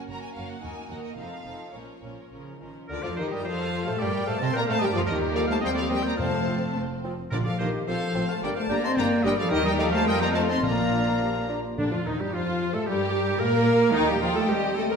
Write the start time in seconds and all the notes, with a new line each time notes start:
0.08 F#1 F#2 A#3 C#4 F#4 A#4 A#5
0.22 G#5
0.34 F#1 F#2 A#3 C#4 F#4 A#4 F5
0.50 F#5
0.62 D#2 A#3 D#4 F#4 A#4 G#5
0.89 D#2 A#3 D#4 F#4 A#4 F#5
1.04 D#5
1.16 F1 F2 F3 C4 D#4 A4 F5
1.45 F1 F2 F3 C4 D#4 A4
1.72 A#1 A#2 F3 C#4 A#4 C#5
2.02 A#1 A#2 F3 C#4 A#4
2.31 A#1 C#3 F3 C#4 A#4
2.60 A#1 D#3 F3 C#4 A#4
2.88 D2 D3 D4 F4 A#4 D5
3.03 F2 F3 F4 A4 D5 F5
3.16 D#2 D#3 D#4 G4 C5 D#5
3.30 G2 G3 G4 A#4 D#5
3.35 G5
3.44 F2 F3 F4 A4 C5 F5
3.85 A2 A3 A4 C5 F5 A5
3.99 G2 G3 G4 A#4 D5 G5
4.26 A2 A3 A4 C5 F5 A5
4.39 C3 C4 C5 D#5 A5
4.44 C6
4.53 A#2 A#3 A#4 D5 G5 A#5
4.58 A#3
4.66 A2 A3 A4 F5
4.70 C5 A5
4.79 G2 G3 G4 A#4 D#5 G5
4.92 F2 F3 F4 A4 D5 F5
4.97 F4
5.06 D#2 D#3 G3 A#3 G4 A#4 D#5
5.11 D#4 G4
5.34 F3 A#3 G4 A4 D5 F5
5.47 A3 C5 F5 A5
5.61 D#2 G3 C4 G4 C5 D#5 G5
5.74 F3 A4 D5 F5
5.88 G3 C4 G4 A#4 D#5 G5
6.02 A#3 D5 G5
6.08 A#5
6.17 F2 F3 A3 C4 C5 F5 A5
6.47 C4 F4
6.75 F1 A3
7.04 F3 C4 F4
7.30 A#1 A#2 D3 F3 D4 F4 A#4 D5
7.44 F3 A4 D5 F5
7.58 A#1 D#3 F3 A#3 D4 F4 G4 A#4 C5 D#5
7.86 A1 F3 C4 F4 A4 C5 F5
8.14 A1 F3 C4 F4 C5
8.27 A3 C5 F5 A5
8.42 G1 D3 G3 D4 G4 A#4 D5 G5
8.56 A3 C5 F5 A5
8.69 G1 D3 A#3 D4 G4 A#4 D5 G5 A#5
8.83 C4 D#5 A5 C6
8.96 G1 D3 A#3 D4 G4 A#4 D5 G5 A#5
9.23 G1 D3 G3 D4 G4 A#4 D#5 G5
9.36 F3 A4 D5 F5
9.49 D#2 D#3 G3 D#4 G4 A#4 D#5
9.64 G3 A#4 D#5 G5
9.79 F3 D#4 G4 A4 D5 F5
9.91 A3 C5 F5 A5
10.06 F2 F3 G3 C4 D#4 F4 A#4 D#5 G5
10.20 A#3 D5 G5 A#5
10.33 A3 D#4 F4 C5 F5 A5
10.48 C4 D#5 A5 C6
10.61 A#1 A#2 F3 A#3 D4 F4 D5 F5 A#5
10.91 D4 F4
11.21 G4
11.49 D4 F4
11.77 D2 A#2 D3 D4
11.91 F2 F3 F4
12.05 D#2 D#3 D#4
12.18 G2 G3 G4
12.33 F2 F3 F4 C5
12.73 A2 A3 A4
12.86 G2 G3 G4 A#4
13.39 A#2 A#3 A#4 D5
13.68 F5
13.93 D#2 D#3 A#3 D#4 D#5 G5 A#5
14.07 G3 G4 G5
14.21 F3 F4 A#5
14.35 A3 A4 G5
14.48 D#2 G3 C4 G4 C5 D#5
14.65 G5
14.75 A3 A4
14.80 A3 D#5
14.90 A#3 A#4